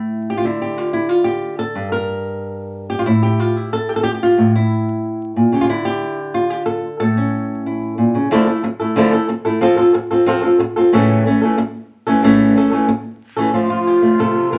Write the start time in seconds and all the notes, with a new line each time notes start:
Already playing: A2 A3 E4
0.30 G4
0.37 F4
0.44 D3 E4
0.62 G4
0.78 F4
0.93 E4
1.09 F4
1.24 G4
1.59 A4
1.75 G2
1.92 A#4
2.90 G4
2.99 F4
3.06 A2 E4
3.23 G4
3.40 F4
3.56 E4
3.73 A4
3.89 G4
3.96 A4
4.03 G4
4.14 G4
4.23 F4
4.38 A2
4.56 E4
5.36 A#2
5.52 C#3 G4
5.61 F4
5.69 D3 E4
5.85 G4
6.34 F4
6.50 G4
6.66 A4
7.00 A2 A4
7.17 C#4
7.66 E4
7.98 A#2
8.15 C#3
8.31 D3 F3 A3 E4 A4
8.47 A3 E4 A4
8.64 muted nylon-string guitar stroke
8.80 A3 E4 A4
8.96 D3 F3 A3 E4 A4
9.13 A3 E4 A4
9.29 muted nylon-string guitar stroke
9.45 A3 E4 A4
9.61 F3 C4 F4 A4
9.77 C4 F4 A4
9.94 muted nylon-string guitar stroke
10.11 C4 F4 A4
10.26 F3 C4 F4 A4
10.43 C4 F4 A4
10.59 muted nylon-string guitar stroke
10.76 C4 F4 A4
10.92 A2 C#3 E3 A3 C#4 A4
11.26 E3 A3 C#4 A4
11.42 E3 A3 C#4 A4
11.58 muted nylon-string guitar stroke
12.07 E3 A3 C#4 A4
12.23 A2 C#3 E3 A3 C#4 A4
12.55 E3 A3 C#4 A4
12.71 E3 A3 C#4 A4
12.88 muted nylon-string guitar stroke
13.36 E3 A3 C#4 A4
13.53 F3 A3 F4
13.70 F4
13.87 G4
14.02 A3
14.19 C3 A4
14.52 E3 A#4